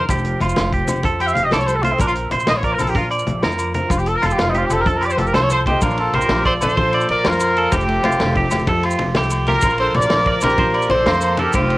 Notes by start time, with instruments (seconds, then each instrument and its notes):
Already playing: steel-string acoustic guitar F4
0.08 upright bass F1, steel-string acoustic guitar F3 C5, clean electric guitar G4, kick, closed hi-hat, high conga, low agogo, maracas
0.18 maracas
0.24 closed hi-hat, low conga
0.40 upright bass F1, steel-string acoustic guitar F4, clean electric guitar F4, closed hi-hat, low conga, low agogo
0.49 maracas
0.56 upright bass F1, steel-string acoustic guitar C5, snare, closed hi-hat, high conga, low agogo
0.72 steel-string acoustic guitar C3, clean electric guitar G4, kick, closed hi-hat
0.80 low conga
0.88 upright bass F1, steel-string acoustic guitar C5, closed hi-hat, low conga, low agogo, maracas
0.96 low conga, maracas
1.03 upright bass F2, steel-string acoustic guitar F3 C5, clean electric guitar A4, kick, closed hi-hat, high conga, low conga
1.19 clean electric guitar G4, horn section G5, closed hi-hat, low conga, low agogo
1.27 horn section E5, maracas
1.33 upright bass F1, steel-string acoustic guitar F4, horn section F5, closed hi-hat, low conga
1.43 horn section D#5
1.51 upright bass C2, clean electric guitar A4, horn section D5, muted steel-string acoustic guitar stroke, snare, closed hi-hat, high conga, low agogo
1.58 horn section C#5, maracas
1.66 steel-string acoustic guitar G3, horn section C5, closed hi-hat, low agogo, maracas
1.75 horn section A4
1.82 steel-string acoustic guitar A3, horn section F4, clean electric guitar C5, closed hi-hat, low conga
1.92 horn section C4
1.98 upright bass A#1, steel-string acoustic guitar A#2 C5, horn section D4, clean electric guitar A#4, kick, closed hi-hat, high conga, low agogo, maracas
2.08 horn section F4, maracas
2.15 closed hi-hat, low conga
2.31 upright bass A#1, steel-string acoustic guitar F3, clean electric guitar C5, closed hi-hat, low conga, low agogo
2.40 maracas
2.47 upright bass A#1, steel-string acoustic guitar F4, horn section D#5, snare, closed hi-hat, high conga, low agogo
2.56 horn section C#5
2.63 steel-string acoustic guitar F3, clean electric guitar A#4, horn section D5, kick, closed hi-hat
2.73 horn section A#4
2.79 upright bass A#1, steel-string acoustic guitar D4, horn section A4, closed hi-hat, low conga, low agogo, maracas
2.87 steel-string acoustic guitar F4, horn section G4, low conga, maracas
2.95 upright bass A#2, steel-string acoustic guitar D4, horn section F4, clean electric guitar A#4, muted steel-string acoustic guitar stroke, kick, closed hi-hat, high conga, low conga
3.10 clean electric guitar D5, closed hi-hat, low conga, low agogo
3.19 maracas
3.27 upright bass A#1, steel-string acoustic guitar F3, closed hi-hat, low conga
3.42 upright bass F2, steel-string acoustic guitar F4, clean electric guitar A#4, snare, closed hi-hat, high conga, low agogo
3.52 maracas
3.58 steel-string acoustic guitar F3, closed hi-hat, low agogo, maracas
3.74 clean electric guitar A#4, steel-string acoustic guitar C5, closed hi-hat, low conga
3.89 upright bass F1, steel-string acoustic guitar F3, horn section F4, muted clean electric guitar stroke, kick, closed hi-hat, high conga, low conga, low agogo, maracas
3.98 horn section G4, low conga, maracas
4.06 horn section A4, closed hi-hat
4.16 horn section A#4
4.22 upright bass F1, clean electric guitar F4, steel-string acoustic guitar F4, horn section A4, closed hi-hat, low conga, low agogo
4.30 horn section G4, maracas
4.38 upright bass F1, horn section F4, snare, closed hi-hat, high conga, low agogo
4.49 horn section D#4
4.54 steel-string acoustic guitar C3, horn section F4, clean electric guitar G4, closed hi-hat
4.63 horn section G4, low conga
4.70 upright bass F1, steel-string acoustic guitar F4, horn section A4, closed hi-hat, low conga, low agogo, maracas
4.79 horn section A#4, low conga
4.86 upright bass F2, steel-string acoustic guitar F3 F4, clean electric guitar A4, horn section A4, kick, closed hi-hat, high conga, low conga
4.95 horn section A#4, low conga
5.01 clean electric guitar G4, horn section D5, closed hi-hat, low conga, low agogo
5.10 horn section C5, maracas
5.17 upright bass F1, steel-string acoustic guitar F4, horn section A4, closed hi-hat, low conga
5.26 horn section A#4, maracas
5.33 upright bass C2, steel-string acoustic guitar F3, clean electric guitar A4, horn section C5, snare, closed hi-hat, high conga, low agogo
5.42 horn section C#5
5.50 horn section C5, closed hi-hat, low conga, low agogo, maracas
5.66 steel-string acoustic guitar A3, horn section D#4 G4, clean electric guitar C5, kick, closed hi-hat, low conga
5.81 upright bass A#1, steel-string acoustic guitar A#2 D4, horn section D4 F4, clean electric guitar A#4, kick, ride, high conga, low agogo, maracas
5.90 maracas
5.97 steel-string acoustic guitar D4, horn section F4 A4, ride, low conga
6.13 upright bass A#1, steel-string acoustic guitar F4, horn section G4 A#4, clean electric guitar C5, ride, low conga, low agogo
6.21 maracas
6.29 upright bass A#1, steel-string acoustic guitar F3, snare, ride, high conga, low agogo
6.45 horn section A4 C5, clean electric guitar D5, kick, ride
6.54 low conga
6.61 upright bass A#1, steel-string acoustic guitar F4, horn section A4 C5, ride, low conga, low agogo, maracas
6.69 low conga, maracas
6.77 steel-string acoustic guitar A#2 D4 F4, upright bass A#2, clean electric guitar C5, kick, ride, high conga, low conga
6.93 steel-string acoustic guitar D4, clean electric guitar D5, ride, low conga, low agogo
7.01 maracas
7.09 upright bass A#1, horn section A#4 D5, steel-string acoustic guitar C5, ride
7.25 upright bass F2, steel-string acoustic guitar F3, horn section F4 A#4, muted clean electric guitar stroke, snare, ride, high conga, low agogo
7.33 maracas
7.40 ride, low agogo, maracas
7.57 steel-string acoustic guitar F4, clean electric guitar A4, ride
7.72 upright bass F1, steel-string acoustic guitar F3 A3, horn section C4 G4, clean electric guitar G4, kick, ride, high conga, low agogo, maracas
7.80 maracas
7.88 steel-string acoustic guitar A3, ride, low conga
8.04 upright bass F1, steel-string acoustic guitar A3, clean electric guitar F4, ride, low conga, low agogo
8.12 maracas
8.19 upright bass F1, steel-string acoustic guitar A3, snare, ride, high conga, low agogo
8.35 clean electric guitar G4, kick, ride
8.44 low conga
8.51 upright bass F1, steel-string acoustic guitar A3, snare, ride, low conga, low agogo, maracas
8.59 low conga, maracas
8.67 upright bass F2, steel-string acoustic guitar F3 G4 C5, clean electric guitar A4, kick, ride, high conga, low conga
8.83 clean electric guitar F4, steel-string acoustic guitar G4, ride, low conga, low agogo
8.91 maracas
8.99 upright bass F1, muted steel-string acoustic guitar stroke, ride, low conga
9.14 upright bass C2, steel-string acoustic guitar A3, clean electric guitar G4, snare, ride, high conga, low agogo
9.23 maracas
9.30 ride, low agogo, maracas
9.46 horn section F4 A#4, clean electric guitar G4, ride, low conga
9.61 upright bass A#1, steel-string acoustic guitar D4, clean electric guitar A#4, muted steel-string acoustic guitar stroke, kick, ride, high conga, low agogo, maracas
9.65 steel-string acoustic guitar F4
9.70 maracas
9.78 steel-string acoustic guitar D4, horn section A4 C5, ride, low conga
9.94 upright bass A#1, horn section A#4 D5, steel-string acoustic guitar C5, ride, low conga, low agogo
10.02 maracas
10.10 upright bass A#1, steel-string acoustic guitar F3, snare, ride, high conga, low agogo
10.26 clean electric guitar D5, kick, ride
10.35 low conga
10.41 upright bass A#1, steel-string acoustic guitar F4, horn section G4 A#4, snare, ride, low conga, low agogo, maracas
10.49 low conga, maracas
10.58 upright bass A#2, steel-string acoustic guitar A#2 D4 F4, clean electric guitar C5, kick, ride, high conga, low conga
10.74 steel-string acoustic guitar D4, clean electric guitar D5, ride, low conga, low agogo
10.82 maracas
10.89 upright bass A#1, horn section A4 C5, muted steel-string acoustic guitar stroke, ride, low conga
11.06 upright bass F2, steel-string acoustic guitar F3, clean electric guitar A#3, snare, ride, high conga, low agogo
11.13 maracas
11.21 ride, low agogo, maracas
11.37 steel-string acoustic guitar F4, horn section G4 A#4, clean electric guitar A4, ride, low conga
11.53 upright bass F1, steel-string acoustic guitar F3, horn section C4 F4, clean electric guitar G4, kick, ride, high conga, low conga, low agogo, maracas
11.70 ride